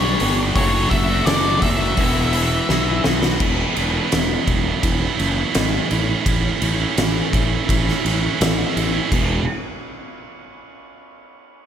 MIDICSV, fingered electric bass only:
0, 0, Header, 1, 2, 480
1, 0, Start_track
1, 0, Tempo, 713436
1, 380, Time_signature, 4, 2, 24, 8
1, 7846, End_track
2, 0, Start_track
2, 0, Title_t, "Fingered electric bass"
2, 0, Program_c, 0, 33
2, 0, Note_on_c, 0, 35, 94
2, 102, Note_off_c, 0, 35, 0
2, 140, Note_on_c, 0, 31, 94
2, 344, Note_off_c, 0, 31, 0
2, 375, Note_on_c, 0, 30, 98
2, 581, Note_off_c, 0, 30, 0
2, 615, Note_on_c, 0, 30, 90
2, 821, Note_off_c, 0, 30, 0
2, 849, Note_on_c, 0, 30, 92
2, 1057, Note_off_c, 0, 30, 0
2, 1091, Note_on_c, 0, 30, 83
2, 1298, Note_off_c, 0, 30, 0
2, 1329, Note_on_c, 0, 28, 106
2, 1742, Note_off_c, 0, 28, 0
2, 1810, Note_on_c, 0, 35, 88
2, 2018, Note_off_c, 0, 35, 0
2, 2056, Note_on_c, 0, 35, 94
2, 2261, Note_off_c, 0, 35, 0
2, 2291, Note_on_c, 0, 28, 86
2, 2440, Note_off_c, 0, 28, 0
2, 2536, Note_on_c, 0, 28, 89
2, 2683, Note_off_c, 0, 28, 0
2, 2779, Note_on_c, 0, 28, 90
2, 2926, Note_off_c, 0, 28, 0
2, 3009, Note_on_c, 0, 28, 82
2, 3159, Note_off_c, 0, 28, 0
2, 3252, Note_on_c, 0, 28, 91
2, 3401, Note_off_c, 0, 28, 0
2, 3496, Note_on_c, 0, 30, 81
2, 3644, Note_off_c, 0, 30, 0
2, 3736, Note_on_c, 0, 32, 84
2, 3884, Note_off_c, 0, 32, 0
2, 3979, Note_on_c, 0, 33, 96
2, 4126, Note_off_c, 0, 33, 0
2, 4212, Note_on_c, 0, 33, 92
2, 4361, Note_off_c, 0, 33, 0
2, 4453, Note_on_c, 0, 33, 94
2, 4601, Note_off_c, 0, 33, 0
2, 4695, Note_on_c, 0, 33, 92
2, 4843, Note_off_c, 0, 33, 0
2, 4935, Note_on_c, 0, 33, 89
2, 5083, Note_off_c, 0, 33, 0
2, 5175, Note_on_c, 0, 33, 97
2, 5322, Note_off_c, 0, 33, 0
2, 5414, Note_on_c, 0, 33, 89
2, 5562, Note_off_c, 0, 33, 0
2, 5656, Note_on_c, 0, 33, 98
2, 5803, Note_off_c, 0, 33, 0
2, 5898, Note_on_c, 0, 33, 102
2, 6044, Note_off_c, 0, 33, 0
2, 6134, Note_on_c, 0, 28, 88
2, 6360, Note_off_c, 0, 28, 0
2, 7846, End_track
0, 0, End_of_file